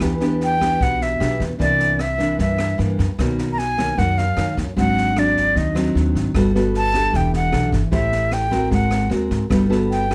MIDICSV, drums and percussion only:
0, 0, Header, 1, 2, 480
1, 0, Start_track
1, 0, Tempo, 395517
1, 19, Time_signature, 4, 2, 24, 8
1, 12314, End_track
2, 0, Start_track
2, 0, Title_t, "Drums"
2, 3, Note_on_c, 9, 37, 59
2, 3, Note_on_c, 9, 38, 26
2, 10, Note_on_c, 9, 36, 53
2, 124, Note_off_c, 9, 37, 0
2, 124, Note_off_c, 9, 38, 0
2, 131, Note_off_c, 9, 36, 0
2, 247, Note_on_c, 9, 38, 23
2, 368, Note_off_c, 9, 38, 0
2, 490, Note_on_c, 9, 38, 21
2, 611, Note_off_c, 9, 38, 0
2, 737, Note_on_c, 9, 36, 22
2, 743, Note_on_c, 9, 37, 52
2, 743, Note_on_c, 9, 38, 22
2, 858, Note_off_c, 9, 36, 0
2, 864, Note_off_c, 9, 37, 0
2, 864, Note_off_c, 9, 38, 0
2, 979, Note_on_c, 9, 36, 57
2, 982, Note_on_c, 9, 38, 21
2, 1100, Note_off_c, 9, 36, 0
2, 1103, Note_off_c, 9, 38, 0
2, 1228, Note_on_c, 9, 38, 24
2, 1349, Note_off_c, 9, 38, 0
2, 1469, Note_on_c, 9, 37, 55
2, 1469, Note_on_c, 9, 38, 23
2, 1591, Note_off_c, 9, 37, 0
2, 1591, Note_off_c, 9, 38, 0
2, 1702, Note_on_c, 9, 36, 23
2, 1704, Note_on_c, 9, 38, 21
2, 1823, Note_off_c, 9, 36, 0
2, 1825, Note_off_c, 9, 38, 0
2, 1941, Note_on_c, 9, 36, 62
2, 1941, Note_on_c, 9, 38, 23
2, 2062, Note_off_c, 9, 36, 0
2, 2062, Note_off_c, 9, 38, 0
2, 2175, Note_on_c, 9, 38, 22
2, 2297, Note_off_c, 9, 38, 0
2, 2418, Note_on_c, 9, 37, 51
2, 2418, Note_on_c, 9, 38, 22
2, 2539, Note_off_c, 9, 37, 0
2, 2539, Note_off_c, 9, 38, 0
2, 2657, Note_on_c, 9, 38, 23
2, 2661, Note_on_c, 9, 36, 20
2, 2778, Note_off_c, 9, 38, 0
2, 2783, Note_off_c, 9, 36, 0
2, 2898, Note_on_c, 9, 38, 24
2, 2902, Note_on_c, 9, 36, 55
2, 3020, Note_off_c, 9, 38, 0
2, 3024, Note_off_c, 9, 36, 0
2, 3137, Note_on_c, 9, 37, 60
2, 3137, Note_on_c, 9, 38, 26
2, 3258, Note_off_c, 9, 37, 0
2, 3258, Note_off_c, 9, 38, 0
2, 3384, Note_on_c, 9, 38, 19
2, 3505, Note_off_c, 9, 38, 0
2, 3626, Note_on_c, 9, 36, 25
2, 3628, Note_on_c, 9, 38, 24
2, 3748, Note_off_c, 9, 36, 0
2, 3750, Note_off_c, 9, 38, 0
2, 3868, Note_on_c, 9, 36, 61
2, 3871, Note_on_c, 9, 37, 54
2, 3871, Note_on_c, 9, 38, 23
2, 3990, Note_off_c, 9, 36, 0
2, 3992, Note_off_c, 9, 37, 0
2, 3992, Note_off_c, 9, 38, 0
2, 4105, Note_on_c, 9, 38, 23
2, 4226, Note_off_c, 9, 38, 0
2, 4349, Note_on_c, 9, 38, 23
2, 4471, Note_off_c, 9, 38, 0
2, 4588, Note_on_c, 9, 36, 24
2, 4594, Note_on_c, 9, 37, 52
2, 4594, Note_on_c, 9, 38, 21
2, 4709, Note_off_c, 9, 36, 0
2, 4716, Note_off_c, 9, 37, 0
2, 4716, Note_off_c, 9, 38, 0
2, 4829, Note_on_c, 9, 36, 51
2, 4829, Note_on_c, 9, 38, 20
2, 4950, Note_off_c, 9, 36, 0
2, 4950, Note_off_c, 9, 38, 0
2, 5069, Note_on_c, 9, 38, 24
2, 5190, Note_off_c, 9, 38, 0
2, 5306, Note_on_c, 9, 37, 53
2, 5306, Note_on_c, 9, 38, 21
2, 5427, Note_off_c, 9, 37, 0
2, 5427, Note_off_c, 9, 38, 0
2, 5547, Note_on_c, 9, 36, 23
2, 5549, Note_on_c, 9, 38, 22
2, 5669, Note_off_c, 9, 36, 0
2, 5670, Note_off_c, 9, 38, 0
2, 5788, Note_on_c, 9, 36, 56
2, 5790, Note_on_c, 9, 38, 24
2, 5910, Note_off_c, 9, 36, 0
2, 5911, Note_off_c, 9, 38, 0
2, 6036, Note_on_c, 9, 38, 21
2, 6157, Note_off_c, 9, 38, 0
2, 6268, Note_on_c, 9, 37, 55
2, 6268, Note_on_c, 9, 38, 21
2, 6389, Note_off_c, 9, 37, 0
2, 6389, Note_off_c, 9, 38, 0
2, 6506, Note_on_c, 9, 36, 22
2, 6511, Note_on_c, 9, 38, 22
2, 6627, Note_off_c, 9, 36, 0
2, 6632, Note_off_c, 9, 38, 0
2, 6744, Note_on_c, 9, 36, 54
2, 6747, Note_on_c, 9, 38, 21
2, 6866, Note_off_c, 9, 36, 0
2, 6869, Note_off_c, 9, 38, 0
2, 6988, Note_on_c, 9, 37, 60
2, 6988, Note_on_c, 9, 38, 22
2, 7109, Note_off_c, 9, 37, 0
2, 7109, Note_off_c, 9, 38, 0
2, 7230, Note_on_c, 9, 38, 20
2, 7351, Note_off_c, 9, 38, 0
2, 7464, Note_on_c, 9, 36, 25
2, 7469, Note_on_c, 9, 38, 23
2, 7585, Note_off_c, 9, 36, 0
2, 7590, Note_off_c, 9, 38, 0
2, 7700, Note_on_c, 9, 36, 61
2, 7701, Note_on_c, 9, 37, 57
2, 7701, Note_on_c, 9, 38, 25
2, 7822, Note_off_c, 9, 36, 0
2, 7823, Note_off_c, 9, 37, 0
2, 7823, Note_off_c, 9, 38, 0
2, 7951, Note_on_c, 9, 38, 23
2, 8073, Note_off_c, 9, 38, 0
2, 8181, Note_on_c, 9, 38, 23
2, 8302, Note_off_c, 9, 38, 0
2, 8420, Note_on_c, 9, 36, 22
2, 8422, Note_on_c, 9, 37, 49
2, 8422, Note_on_c, 9, 38, 24
2, 8542, Note_off_c, 9, 36, 0
2, 8543, Note_off_c, 9, 37, 0
2, 8543, Note_off_c, 9, 38, 0
2, 8657, Note_on_c, 9, 36, 54
2, 8660, Note_on_c, 9, 38, 22
2, 8779, Note_off_c, 9, 36, 0
2, 8782, Note_off_c, 9, 38, 0
2, 8898, Note_on_c, 9, 38, 23
2, 9019, Note_off_c, 9, 38, 0
2, 9132, Note_on_c, 9, 37, 49
2, 9132, Note_on_c, 9, 38, 20
2, 9254, Note_off_c, 9, 37, 0
2, 9254, Note_off_c, 9, 38, 0
2, 9374, Note_on_c, 9, 36, 24
2, 9375, Note_on_c, 9, 38, 24
2, 9495, Note_off_c, 9, 36, 0
2, 9497, Note_off_c, 9, 38, 0
2, 9606, Note_on_c, 9, 38, 25
2, 9612, Note_on_c, 9, 36, 65
2, 9727, Note_off_c, 9, 38, 0
2, 9734, Note_off_c, 9, 36, 0
2, 9852, Note_on_c, 9, 38, 23
2, 9974, Note_off_c, 9, 38, 0
2, 10093, Note_on_c, 9, 37, 57
2, 10093, Note_on_c, 9, 38, 23
2, 10214, Note_off_c, 9, 37, 0
2, 10214, Note_off_c, 9, 38, 0
2, 10333, Note_on_c, 9, 38, 22
2, 10334, Note_on_c, 9, 36, 22
2, 10455, Note_off_c, 9, 38, 0
2, 10456, Note_off_c, 9, 36, 0
2, 10575, Note_on_c, 9, 36, 54
2, 10575, Note_on_c, 9, 38, 24
2, 10696, Note_off_c, 9, 36, 0
2, 10696, Note_off_c, 9, 38, 0
2, 10810, Note_on_c, 9, 37, 60
2, 10810, Note_on_c, 9, 38, 25
2, 10931, Note_off_c, 9, 37, 0
2, 10931, Note_off_c, 9, 38, 0
2, 11049, Note_on_c, 9, 38, 22
2, 11170, Note_off_c, 9, 38, 0
2, 11292, Note_on_c, 9, 38, 22
2, 11293, Note_on_c, 9, 36, 25
2, 11413, Note_off_c, 9, 38, 0
2, 11414, Note_off_c, 9, 36, 0
2, 11535, Note_on_c, 9, 36, 62
2, 11537, Note_on_c, 9, 37, 61
2, 11537, Note_on_c, 9, 38, 26
2, 11656, Note_off_c, 9, 36, 0
2, 11658, Note_off_c, 9, 37, 0
2, 11658, Note_off_c, 9, 38, 0
2, 11789, Note_on_c, 9, 38, 25
2, 11911, Note_off_c, 9, 38, 0
2, 12028, Note_on_c, 9, 38, 22
2, 12150, Note_off_c, 9, 38, 0
2, 12264, Note_on_c, 9, 36, 20
2, 12270, Note_on_c, 9, 37, 60
2, 12270, Note_on_c, 9, 38, 23
2, 12314, Note_off_c, 9, 36, 0
2, 12314, Note_off_c, 9, 37, 0
2, 12314, Note_off_c, 9, 38, 0
2, 12314, End_track
0, 0, End_of_file